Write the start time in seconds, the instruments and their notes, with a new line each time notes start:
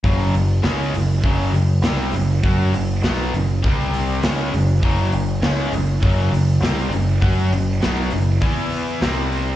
0.04 picked electric bass F#1, distorted electric guitar F#2 C#3 F#3, kick, open hi-hat
0.34 picked electric bass F#1, distorted electric guitar F#2 C#3, open hi-hat
0.62 picked electric bass C#2, distorted electric guitar C#3 G#3 C#4, snare, open hi-hat
0.94 picked electric bass F#1, distorted electric guitar F#2 C#3, open hi-hat
1.23 picked electric bass F#1, distorted electric guitar F#2 C#3 F#3, kick, open hi-hat
1.52 picked electric bass F#1, distorted electric guitar F#2 C#3, open hi-hat
1.82 picked electric bass C2, distorted electric guitar C3, snare, open hi-hat
1.86 distorted electric guitar G3 C4
2.12 picked electric bass F#1, distorted electric guitar F#2, open hi-hat
2.16 distorted electric guitar C#3
2.43 picked electric bass F#2, distorted electric guitar F#3 C#4 F#4, kick, open hi-hat
2.73 picked electric bass F#1, distorted electric guitar F#2 C#3, open hi-hat
3.02 picked electric bass B1, distorted electric guitar B2 F#3 B3, snare, open hi-hat
3.32 picked electric bass F#1, distorted electric guitar F#2 C#3, open hi-hat
3.64 picked electric bass C2, distorted electric guitar C3 G3 C4, kick, open hi-hat
3.94 open hi-hat
4.23 picked electric bass C#2, distorted electric guitar C#3 G#3 C#4, snare, open hi-hat
4.53 picked electric bass F#1, distorted electric guitar F#2 C#3, open hi-hat
4.83 picked electric bass F#1, distorted electric guitar F#2 C#3 F#3, kick, open hi-hat
5.12 picked electric bass F#1, distorted electric guitar F#2 C#3, open hi-hat
5.42 picked electric bass C#2, distorted electric guitar C#3 G#3 C#4, snare, open hi-hat
5.71 picked electric bass F#1, distorted electric guitar F#2 C#3, open hi-hat
6.02 picked electric bass F#1, distorted electric guitar F#2 C#3 F#3, kick, open hi-hat
6.31 picked electric bass F#1, distorted electric guitar F#2 C#3, open hi-hat
6.60 picked electric bass C2, distorted electric guitar C3 G3 C4, snare, open hi-hat
6.89 picked electric bass F#1, distorted electric guitar F#2, open hi-hat
6.94 distorted electric guitar C#3
7.22 picked electric bass F#2, distorted electric guitar F#3 C#4 F#4, kick, open hi-hat
7.51 picked electric bass F#1, distorted electric guitar F#2 C#3, open hi-hat
7.82 picked electric bass B1, distorted electric guitar B2 F#3 B3, snare, open hi-hat
8.11 picked electric bass F#1, distorted electric guitar F#2 C#3, open hi-hat
8.41 picked electric bass E2, distorted electric guitar E3 B3 E4, kick, open hi-hat
8.72 open hi-hat
9.02 picked electric bass C2, distorted electric guitar C3 G3 C4, snare, open hi-hat
9.32 open hi-hat